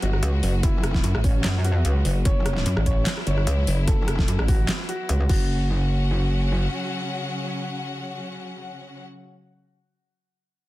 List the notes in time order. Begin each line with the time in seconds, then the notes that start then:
Already playing: F#3 B3 F#4
0.02 G1 F#4, closed hi-hat
0.13 cross-stick
0.23 C#2, closed hi-hat
0.43 F#1, open hi-hat
0.63 F#1 E4, kick, closed hi-hat
0.84 cross-stick, closed hi-hat
0.94 kick, snare
1.04 F#2, closed hi-hat
1.15 A1, cross-stick
1.24 C#4, kick, open hi-hat
1.44 F#2, snare, clap, closed hi-hat
1.65 F#4, closed hi-hat
1.85 C#2, closed hi-hat
2.05 F#1, open hi-hat
2.25 F#1 E4 C#5, kick, closed hi-hat
2.46 cross-stick, closed hi-hat
2.57 snare
2.66 F#2, closed hi-hat
2.77 A1, cross-stick
2.86 C#5, kick, closed hi-hat
3.06 snare, clap, closed hi-hat
3.17 cross-stick
3.27 G1 C#5, closed hi-hat
3.38 cross-stick
3.47 C#2, closed hi-hat
3.67 F#1, open hi-hat
3.88 F#1 A4, kick, closed hi-hat
4.08 cross-stick, closed hi-hat
4.19 kick, snare
4.28 F#2, closed hi-hat
4.39 A1, cross-stick
4.48 F#4, kick, open hi-hat
4.69 snare, clap, closed hi-hat
4.89 F#4, closed hi-hat
5.09 C#2, closed hi-hat
5.29 F#1 C#3 F#3 C#4 F#4 F#5, kick, crash